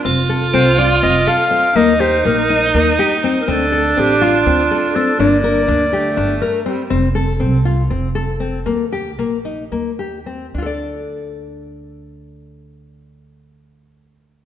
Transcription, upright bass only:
\new Staff \with { instrumentName = "Upright bass" } { \clef bass \time 7/8 \key d \phrygian \tempo 4 = 122 f,,4 c,4 f,,8 r4 | ees,4 bes,,4 ees,8 r4 | d,4 a,,4 d,8 r4 | g,,4 d,4 g,,8 r4 |
f,,4 c,4 f,,4. | ees,4 bes,,4 ees,4. | d,2.~ d,8~ | d,2.~ d,8 | }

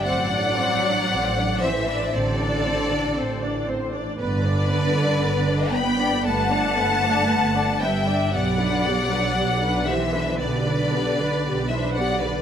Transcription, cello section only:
\new Staff \with { instrumentName = "Cello section" } { \clef bass \time 4/4 \key g \major \tempo 4 = 58 fis4. e8 d4. r8 | d4. b8 a4. g8 | fis4. e8 d4~ d16 e16 fis16 d16 | }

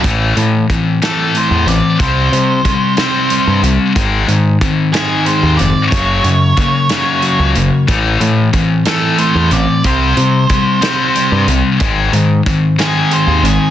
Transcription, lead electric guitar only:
\new Staff \with { instrumentName = "Lead electric guitar" } { \time 6/8 \key a \phrygian \tempo 4. = 61 r4. a'8 c''8 d''8 | c''2~ c''8 r8 | r4. aes'8 c''8 d''8 | des''2~ des''8 r8 |
r4. a'8 c''8 d''8 | c''2~ c''8 r8 | r4. aes'8 c''8 aes'8 | }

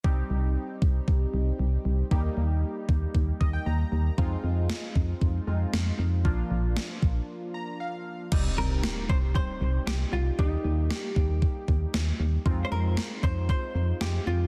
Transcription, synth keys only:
\new Staff \with { instrumentName = "Synth keys" } { \time 4/4 \key c \minor \tempo 4 = 116 << { r1 | r2 r8 ees''16 g''16 bes''4 | r1 | r2 r8 bes''8 f''4 |
r1 | r1 | r1 | } \\ { <g c' ees' g'>1 | <g bes ees' g'>1 | <aes c' ees' f'>2~ <aes c' ees' f'>8 <aes c' ees' f'>4. | <f bes d' f'>1 |
<g c' ees' g'>1 | <g bes ees' g'>1 | <aes c' ees' f'>2. <aes c' ees' f'>4 | } >> }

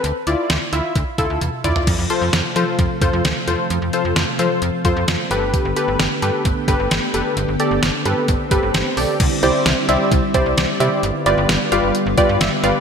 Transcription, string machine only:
\new Staff \with { instrumentName = "String machine" } { \time 4/4 \key f \lydian \tempo 4 = 131 << { r1 | <f a f'>1~ | <f a f'>2.~ <f a f'>8 <a b g'>8~ | <a b g'>1~ |
<a b g'>1 | <g c' e'>1 | <g b f'>1 | } \\ { r1 | c1~ | c2.~ c8 d8~ | d1~ |
d1 | d1~ | d1 | } >> }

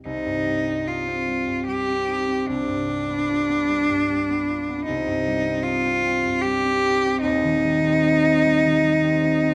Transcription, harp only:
<<
  \new Staff \with { instrumentName = "Harp" } { \time 3/4 \key c \minor \tempo 4 = 75 << { c'''2. | r2. | r2. | r2. | } \\ { <c'' g''>2.~ | <c'' g''>2. | r2. | r2. | } >> }
  \new Staff \with { instrumentName = "Harp" } { \time 3/4 \key c \minor <c, g c' ees'>16 g,16 g16 c'16 ees'16 c'16 g16 g,16 g16 c'16 ees'16 c'16 | c,16 g,16 g16 b16 f'16 b16 g16 g,16 g16 b16 f'16 b16 | c,16 g,16 g16 c'16 ees'16 c'16 g16 g,16 g16 c'16 ees'16 c'16 | <ees,, ees,>16 ees16 g16 c'16 ees'16 c'16 g16 ees16 g16 c'16 ees'16 c'16 | }
>>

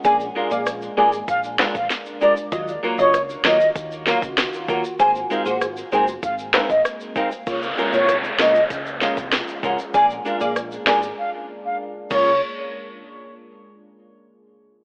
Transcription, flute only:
\new Staff \with { instrumentName = "Flute" } { \time 4/4 \key des \major \tempo 4 = 97 aes''16 r16 f''16 f''16 r8 aes''16 r16 f''16 r8 f''16 r8 d''16 r16 | r8. des''8 r16 ees''8 r8 f''16 r8. ges''16 r16 | aes''16 r16 f''16 ges''16 r8 aes''16 r16 f''16 r8 ees''16 r8 f''16 r16 | r8. des''8 r16 ees''8 r8 f''16 r8. ges''16 r16 |
aes''16 r16 f''16 f''16 r8 aes''16 r16 f''16 r8 f''16 r8 des''8 | r1 | }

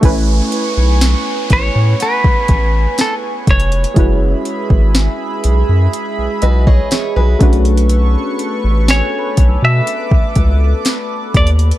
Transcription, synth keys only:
\new Staff \with { instrumentName = "Synth keys" } { \time 4/4 \key a \lydian \tempo 4 = 61 << { r1 | r2 r8 <b' dis''>16 cis''8 <gis' b'>8 r16 | r1 | } \\ { <a cis' e' b' gis''>1 | <gis cis' e' fis' b'>2.~ <gis cis' e' fis' b'>8 <a cis' d' fis' b'>8~ | <a cis' d' fis' b'>2.~ <a cis' d' fis' b'>8 r8 | } >> }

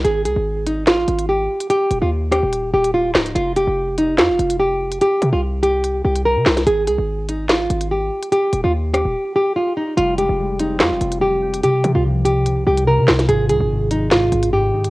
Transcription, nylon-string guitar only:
\new Staff \with { instrumentName = "Nylon-string guitar" } { \time 4/4 \key f \minor \tempo 4 = 145 aes'8 aes'4 ees'8 f'4 g'4 | g'8. f'16 r8 g'4 g'8 f'8 ees'8 | f'8 g'4 ees'8 f'4 g'4 | g'8. f'16 r8 g'4 g'8 bes'4 |
aes'8 aes'4 ees'8 f'4 g'4 | g'8. f'16 r8 g'4 g'8 f'8 ees'8 | f'8 g'4 ees'8 f'4 g'4 | g'8. f'16 r8 g'4 g'8 bes'4 |
aes'8 aes'4 ees'8 f'4 g'4 | }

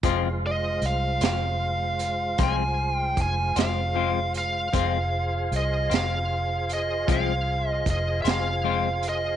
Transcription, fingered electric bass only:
\new Staff \with { instrumentName = "Fingered electric bass" } { \clef bass \time 12/8 \key f \minor \tempo 4. = 51 f,,4 c,8 f,,4. c,4 f,,8 f,,4. | f,,4 c,8 f,,4. c,4 f,,8 f,,4. | }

